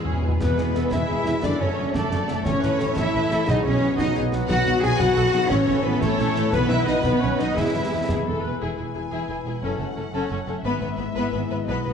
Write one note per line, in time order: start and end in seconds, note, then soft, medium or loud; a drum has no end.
0.00 0.22 E2 soft
0.00 0.39 E3 soft
0.00 0.37 G#3 medium
0.00 0.38 G#3 soft
0.00 0.22 B3 soft
0.00 0.38 G#4 soft
0.00 0.38 G#4 medium
0.00 0.57 G#4 soft
0.00 0.66 B4 soft
0.05 0.11 E2 medium
0.05 0.24 C#4 soft
0.05 1.34 E4 soft
0.12 0.18 E2 medium
0.20 0.27 E2 medium
0.20 0.48 B3 soft
0.24 0.31 B2 soft
0.24 0.31 G#3 soft
0.24 0.30 B3 soft
0.24 0.41 B3 soft
0.24 0.30 E4 soft
0.28 0.35 E2 medium
0.40 0.48 E1 medium
0.40 0.48 E2 medium
0.40 1.40 B2 soft
0.40 1.45 E3 medium
0.40 1.40 G#3 soft
0.40 0.91 B3 medium
0.40 0.57 B4 medium
0.40 0.91 B4 medium
0.40 0.93 B4 medium
0.40 concert bass drum medium
0.40 snare medium
0.40 crash soft
0.49 1.25 B3 soft
0.58 0.65 E1 soft
0.58 0.65 E2 soft
0.58 1.17 G#4 soft
0.58 0.75 G#4 soft
0.58 snare soft
0.67 1.08 B4 soft
0.74 0.81 E1 soft
0.74 0.82 E2 soft
0.74 0.92 A4 soft
0.74 0.99 E5 soft
0.74 snare soft
0.84 1.45 G#5 soft
0.91 0.99 E1 medium
0.91 1.00 E2 medium
0.91 1.43 E4 medium
0.91 1.43 G#4 medium
0.91 1.42 E5 medium
0.91 1.44 E5 medium
0.91 1.45 B5 soft
0.91 concert bass drum medium
0.91 snare medium
1.00 1.45 E5 soft
1.09 1.16 E1 soft
1.09 1.16 E2 soft
1.09 1.45 B4 soft
1.18 1.45 G#4 soft
1.26 1.33 E1 soft
1.26 1.33 E2 soft
1.26 1.45 B3 soft
1.26 snare soft
1.35 1.45 E4 soft
1.41 1.50 F#1 medium
1.41 1.50 F#2 medium
1.41 2.48 F#2 soft
1.41 2.44 D3 medium
1.41 3.44 A3 medium
1.41 1.59 D4 medium
1.41 1.60 D4 medium
1.41 1.94 A4 medium
1.41 1.50 D5 medium
1.41 1.61 D5 medium
1.41 concert bass drum medium
1.41 snare medium
1.53 2.27 F#3 soft
1.59 1.67 F#1 soft
1.59 1.68 F#2 soft
1.59 1.94 C#4 medium
1.59 1.95 C#4 medium
1.59 2.02 A4 soft
1.59 1.95 C#5 medium
1.59 1.94 C#5 medium
1.69 2.11 D4 soft
1.77 1.84 F#1 soft
1.77 1.85 F#2 soft
1.77 1.94 D5 soft
1.86 2.96 A5 soft
1.93 2.01 F#1 medium
1.93 2.02 F#2 medium
1.93 2.45 A3 medium
1.93 2.46 A3 medium
1.93 2.44 A4 medium
1.93 2.45 A4 medium
1.93 2.47 D5 soft
1.93 2.45 D5 medium
1.93 concert bass drum medium
1.93 snare medium
2.03 2.19 A4 soft
2.11 2.18 F#1 soft
2.11 2.19 F#2 soft
2.11 2.36 D4 soft
2.11 snare soft
2.21 2.71 A4 soft
2.28 2.35 F#1 soft
2.28 2.36 F#2 soft
2.28 2.47 F#3 soft
2.28 snare soft
2.38 2.47 D4 soft
2.45 2.52 A1 medium
2.45 2.53 A1 medium
2.45 3.50 A2 medium
2.45 3.48 E3 medium
2.45 2.96 C#4 medium
2.45 2.96 C#5 medium
2.45 2.62 C#5 medium
2.45 2.97 C#5 medium
2.45 concert bass drum medium
2.45 snare medium
2.55 3.31 E3 soft
2.62 2.70 A1 medium
2.62 2.71 A1 soft
2.62 3.22 E4 soft
2.62 2.80 B4 medium
2.62 snare soft
2.72 3.14 A4 soft
2.79 2.88 A1 soft
2.79 2.98 A4 medium
2.79 3.05 C#5 soft
2.79 snare medium
2.90 3.50 E5 soft
2.96 3.04 A1 medium
2.96 3.47 E4 medium
2.96 3.15 C#5 medium
2.96 3.48 E5 medium
2.96 3.50 A5 medium
2.96 concert bass drum medium
2.96 snare medium
3.15 3.21 A1 soft
3.15 3.22 A1 soft
3.15 3.50 A4 soft
3.15 3.21 B4 medium
3.23 3.50 E4 soft
3.31 3.38 A1 medium
3.31 3.39 A1 medium
3.31 3.50 E3 soft
3.31 3.48 A4 medium
3.31 snare soft
3.40 3.50 C#4 soft
3.46 3.55 B1 medium
3.46 4.50 B2 medium
3.46 3.95 B2 medium
3.46 5.50 F#3 medium
3.46 5.50 B3 medium
3.46 3.64 D#4 medium
3.46 3.65 D#4 medium
3.46 3.98 G#4 medium
3.46 3.65 D#5 medium
3.46 3.56 D#5 medium
3.46 concert bass drum medium
3.46 snare medium
3.56 4.33 F#3 soft
3.64 3.72 B1 soft
3.64 3.73 B1 medium
3.64 3.98 C#4 medium
3.64 3.98 C#4 loud
3.64 4.24 D#4 medium
3.64 3.97 C#5 medium
3.64 3.98 C#5 medium
3.74 4.16 F#4 medium
3.82 3.89 B1 soft
3.82 3.90 B1 medium
3.82 4.07 B4 soft
3.91 4.91 D#5 medium
3.98 4.06 B1 medium
3.98 4.07 B1 medium
3.98 4.15 D#4 medium
3.98 4.16 D#4 medium
3.98 4.16 F#4 medium
3.98 4.15 D#5 medium
3.98 4.99 F#5 medium
3.98 concert bass drum medium
3.98 snare medium
4.08 4.82 B4 medium
4.15 4.23 B1 medium
4.15 4.24 B1 medium
4.15 4.74 F#4 medium
4.15 4.23 G#4 medium
4.15 snare soft
4.25 4.66 D#4 soft
4.32 4.40 B1 medium
4.32 4.41 B1 medium
4.32 4.58 F#3 medium
4.32 4.98 F#4 medium
4.32 snare medium
4.42 5.41 B3 medium
4.48 4.57 B1 medium
4.48 4.58 B1 medium
4.48 5.53 B2 medium
4.48 4.81 F#4 loud
4.48 4.81 F#4 medium
4.48 4.80 F#5 medium
4.48 concert bass drum medium
4.48 snare medium
4.48 crash soft
4.59 5.33 F#3 medium
4.66 4.73 B1 medium
4.66 4.74 B1 medium
4.66 5.23 D#4 medium
4.66 snare soft
4.75 5.16 F#4 medium
4.82 4.90 B1 medium
4.82 4.91 B1 medium
4.82 5.00 G#4 loud
4.82 5.00 G#4 medium
4.82 5.08 B4 medium
4.82 5.00 G#5 medium
4.82 5.00 G#5 loud
4.82 snare medium
4.92 5.52 D#5 medium
4.99 5.07 B1 medium
4.99 5.08 B1 medium
4.99 5.50 F#4 loud
4.99 5.16 B4 medium
4.99 5.50 F#5 loud
4.99 5.52 F#5 medium
4.99 concert bass drum medium
4.99 snare medium
5.09 5.52 B4 medium
5.17 5.24 B1 medium
5.17 5.52 F#4 medium
5.17 5.24 A4 medium
5.25 5.52 D#4 medium
5.33 5.41 B1 medium
5.33 5.52 F#3 medium
5.33 5.40 G#4 medium
5.33 snare medium
5.43 5.52 B3 medium
5.50 5.57 A1 loud
5.50 5.58 A1 medium
5.50 6.54 A2 medium
5.50 6.36 E3 medium
5.50 5.84 C#4 loud
5.50 5.85 C#4 medium
5.50 6.36 C#4 medium
5.50 6.00 A4 medium
5.50 5.84 C#5 loud
5.50 5.85 C#5 medium
5.50 concert bass drum medium
5.50 snare medium
5.59 6.34 E3 medium
5.68 5.75 A1 medium
5.68 6.25 E4 medium
5.77 6.18 A4 medium
5.84 5.92 A1 medium
5.84 6.01 B3 medium
5.84 6.02 B3 medium
5.84 6.01 B4 medium
5.84 6.10 C#5 medium
5.94 6.54 E5 medium
6.01 6.08 A1 loud
6.01 6.08 A1 medium
6.01 6.52 A3 loud
6.01 6.53 A3 medium
6.01 6.52 A4 loud
6.01 6.53 C#5 medium
6.01 6.54 A5 medium
6.01 concert bass drum medium
6.01 snare medium
6.19 6.25 A1 medium
6.19 6.26 A1 medium
6.19 6.54 A4 medium
6.19 snare soft
6.26 6.54 E4 medium
6.35 6.42 A1 medium
6.35 6.43 A1 medium
6.35 6.54 E3 medium
6.35 snare medium
6.44 6.54 C#4 medium
6.51 6.59 B1 medium
6.51 6.60 B1 medium
6.51 7.58 B2 medium
6.51 7.57 D#3 medium
6.51 6.70 B3 medium
6.51 7.55 B3 medium
6.51 6.70 B3 medium
6.51 6.69 B4 medium
6.51 7.55 B4 medium
6.51 concert bass drum medium
6.51 snare medium
6.61 7.38 F#3 medium
6.70 6.77 B1 medium
6.70 7.29 D#4 medium
6.70 6.87 E4 medium
6.70 6.87 E5 loud
6.70 6.87 E5 medium
6.70 snare soft
6.79 7.21 F#4 soft
6.85 6.94 B1 medium
6.85 6.95 B1 medium
6.85 7.04 D#4 medium
6.85 7.12 B4 medium
6.85 7.03 D#5 medium
6.85 7.04 D#5 medium
6.85 snare medium
6.96 7.58 D#5 medium
7.03 7.11 B1 medium
7.03 7.12 B1 medium
7.03 7.21 B3 loud
7.03 7.22 B3 medium
7.03 7.10 B4 medium
7.03 7.21 B4 medium
7.03 7.58 F#5 medium
7.03 concert bass drum medium
7.03 snare medium
7.13 7.81 B4 medium
7.21 7.29 B1 medium
7.21 7.30 B1 medium
7.21 7.39 C#4 medium
7.21 7.58 F#4 soft
7.21 7.39 C#5 medium
7.21 7.29 C#5 medium
7.39 7.47 B1 medium
7.39 7.58 F#3 soft
7.39 7.57 D#4 medium
7.39 7.57 D#5 medium
7.39 snare soft
7.48 7.64 B3 soft
7.56 7.64 E1 medium
7.56 7.64 E2 medium
7.56 8.43 E3 medium
7.56 8.60 E3 medium
7.56 8.44 G#3 medium
7.56 8.08 E4 medium
7.56 8.09 E4 medium
7.56 8.05 G#4 medium
7.56 8.08 E5 medium
7.56 8.10 E5 medium
7.56 concert bass drum medium
7.56 snare medium
7.65 8.43 B3 soft
7.74 7.81 E1 soft
7.74 7.83 E2 medium
7.74 8.34 G#4 soft
7.82 8.25 B4 soft
7.91 7.99 E1 soft
7.91 7.99 E2 soft
7.91 8.16 E5 soft
8.01 9.64 G#5 soft
8.08 8.16 E1 medium
8.08 8.17 E2 medium
8.08 8.25 G#4 medium
8.08 9.64 B5 soft
8.08 concert bass drum medium
8.08 snare medium
8.17 9.64 E5 soft
8.26 8.34 E1 soft
8.26 8.34 E2 soft
8.26 8.44 A4 medium
8.26 9.11 B4 soft
8.35 8.94 G#4 soft
8.44 8.51 E1 medium
8.44 8.51 E2 medium
8.44 9.64 B3 soft
8.44 8.61 B4 medium
8.53 8.78 E4 soft
8.61 8.69 E1 soft
8.61 8.68 E2 soft
8.61 9.64 E3 soft
8.61 8.76 E4 soft
8.61 8.76 G#4 soft
8.61 9.59 G#5 soft
8.77 8.85 E1 soft
8.77 8.85 E2 soft
8.77 8.84 E4 soft
8.77 9.45 E4 soft
8.77 8.84 G#4 soft
8.94 9.02 E1 soft
8.94 9.01 E2 soft
8.94 9.02 E4 soft
8.94 9.01 G#4 soft
8.94 9.28 G#4 soft
9.11 9.19 E1 soft
9.11 9.18 E2 soft
9.11 9.28 E4 soft
9.11 9.27 G#4 soft
9.11 9.65 B4 soft
9.28 9.36 E1 soft
9.28 9.35 E2 soft
9.28 9.36 E4 soft
9.28 9.35 G#4 soft
9.28 9.64 G#4 soft
9.45 9.53 E1 soft
9.45 9.52 E2 soft
9.45 9.64 E4 soft
9.45 9.53 E4 soft
9.45 9.53 G#4 soft
9.61 9.70 F#1 soft
9.61 9.69 F#2 soft
9.61 10.66 F#2 soft
9.61 9.78 C#4 soft
9.61 9.78 A4 soft
9.61 10.64 F#5 soft
9.79 9.87 F#1 soft
9.79 9.86 F#2 soft
9.79 10.46 A3 soft
9.79 9.86 C#4 soft
9.79 9.86 A4 soft
9.96 10.04 F#1 soft
9.96 10.03 F#2 soft
9.96 10.29 C#4 soft
9.96 10.03 C#4 soft
9.96 10.03 A4 soft
10.13 10.21 F#1 medium
10.13 10.20 F#2 medium
10.13 10.30 C#4 medium
10.13 10.28 A4 medium
10.13 10.66 A4 soft
10.30 10.37 F#1 soft
10.30 10.37 F#2 soft
10.30 10.66 C#4 soft
10.30 10.38 C#4 soft
10.30 10.37 A4 soft
10.47 10.54 F#1 soft
10.47 10.54 F#2 soft
10.47 10.66 A3 soft
10.47 10.54 C#4 soft
10.47 10.54 A4 soft
10.64 10.71 G#1 medium
10.64 10.71 G#2 medium
10.64 11.69 G#2 medium
10.64 10.80 B3 medium
10.64 10.80 B4 medium
10.64 11.65 E5 medium
10.81 10.88 G#1 soft
10.81 10.88 G#2 soft
10.81 11.49 B3 soft
10.81 10.89 B3 soft
10.81 10.88 B4 soft
10.97 11.05 G#1 soft
10.97 11.05 G#2 soft
10.97 11.06 B3 soft
10.97 11.32 E4 soft
10.97 11.04 B4 soft
11.15 11.23 G#1 medium
11.15 11.22 G#2 medium
11.15 11.32 B3 medium
11.15 11.69 G#4 soft
11.15 11.31 B4 medium
11.32 11.40 G#1 soft
11.32 11.40 G#2 soft
11.32 11.41 B3 soft
11.32 11.69 E4 soft
11.32 11.39 B4 soft
11.50 11.57 G#1 soft
11.50 11.57 G#2 soft
11.50 11.84 B3 soft
11.50 11.58 B3 soft
11.50 11.58 B4 soft
11.67 11.75 B1 medium
11.67 11.74 B2 medium
11.67 11.93 B2 soft
11.67 11.84 B3 soft
11.67 11.83 B4 medium
11.67 11.93 D#5 soft
11.83 11.93 B1 soft
11.83 11.90 B2 soft
11.83 11.92 B2 soft
11.83 11.93 B3 soft
11.83 11.92 B4 soft